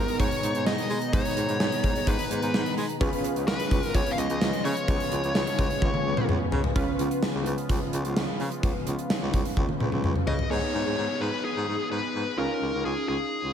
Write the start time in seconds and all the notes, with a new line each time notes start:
Already playing: B2 D#3 G#3 B3 D#4 G#4 A#4 A#5
0.08 closed hi-hat
0.20 G#2 C#5, kick, closed hi-hat
0.31 closed hi-hat
0.43 G#2, closed hi-hat
0.55 G#2, closed hi-hat
0.67 G#2 D#5, snare
0.78 closed hi-hat
0.90 G#3, open hi-hat
1.02 closed hi-hat
1.13 G#2 C#5, kick, closed hi-hat
1.25 closed hi-hat
1.37 G#2, closed hi-hat
1.48 G#2, closed hi-hat
1.60 G#2, snare
1.72 closed hi-hat
1.84 G#2, kick, closed hi-hat
1.96 closed hi-hat
2.07 G#2 B4, kick, closed hi-hat
2.19 closed hi-hat
2.31 G#2, closed hi-hat
2.42 G#2, closed hi-hat
2.54 G#2, snare
2.66 closed hi-hat
2.77 G#3, open hi-hat
2.89 closed hi-hat
3.01 C#2 C#3 F3 G#3 B3 C#4 F4 G#4 B4, kick, closed hi-hat
3.13 closed hi-hat
3.24 closed hi-hat
3.36 C#2, closed hi-hat
3.47 C#2 B4, snare
3.60 closed hi-hat
3.71 C#2, kick, closed hi-hat
3.83 A#4, closed hi-hat
3.94 C#2 C#5, kick, closed hi-hat
4.06 closed hi-hat
4.11 F5
4.18 C#2 D#5, closed hi-hat
4.30 C#2, closed hi-hat
4.41 C#2, snare
4.53 closed hi-hat
4.65 C#3 C#5, open hi-hat
4.77 closed hi-hat
4.88 C#2, kick, closed hi-hat
5.00 closed hi-hat
5.12 C#2, closed hi-hat
5.23 C#2, closed hi-hat
5.35 C#2, snare
5.47 closed hi-hat
5.59 C#2, kick, closed hi-hat
5.70 closed hi-hat
5.82 C#2, kick, high tom
5.94 high tom
6.05 C#2
6.17 C#2, mid tom
6.29 C#2, mid tom
6.52 C#3, floor tom
6.64 floor tom
6.75 C#2 C#3 F3 G#3 B3 C#4 F4 B4, kick, closed hi-hat
6.99 C#2, closed hi-hat
7.11 closed hi-hat
7.23 snare
7.34 C#2
7.46 C#2, closed hi-hat
7.58 closed hi-hat
7.69 C#2, kick, closed hi-hat
7.93 C#2, closed hi-hat
8.05 C#2, closed hi-hat
8.16 C#2, snare
8.40 C#3, open hi-hat
8.52 closed hi-hat
8.63 C#2, kick, closed hi-hat
8.87 C#2, closed hi-hat
8.99 closed hi-hat
9.10 snare
9.22 C#2
9.33 C#2, kick, closed hi-hat
9.45 closed hi-hat
9.57 C#2, kick, high tom
9.69 high tom
9.80 C#2, mid tom
9.92 C#2, mid tom
10.04 C#2, mid tom
10.16 mid tom
10.27 C#3 D#5, floor tom
10.39 floor tom
10.51 G#2 B3 D#4 G#4 C#5, downlifter
10.74 G#2
10.86 G#2
10.98 G#2
11.21 G#2 B4
11.45 G#4
11.56 G#2
11.68 G#2
11.91 G#2 B4
12.15 G#2
12.38 C#2 C#4 D#4 F4 A#4
12.62 C#2
12.73 C#2
12.85 C#2 G#4
13.08 C#2 G#4
13.44 C#2